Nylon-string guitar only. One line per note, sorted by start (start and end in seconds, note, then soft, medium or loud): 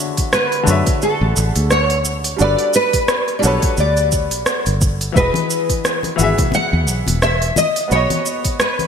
0.34 1.02 B4 medium
1.03 1.48 A4 medium
1.48 1.67 G#4 medium
1.72 2.41 C#5 loud
2.41 2.75 D5 loud
2.75 3.34 B4 loud
3.39 3.44 D5 medium
3.45 3.80 C#5 medium
3.80 4.78 D5 medium
5.17 6.54 B4 loud
6.55 7.23 F#5 loud
7.23 7.57 E5 loud
7.58 7.89 D#5 loud
7.92 8.60 C#5 loud
8.61 8.87 B4 medium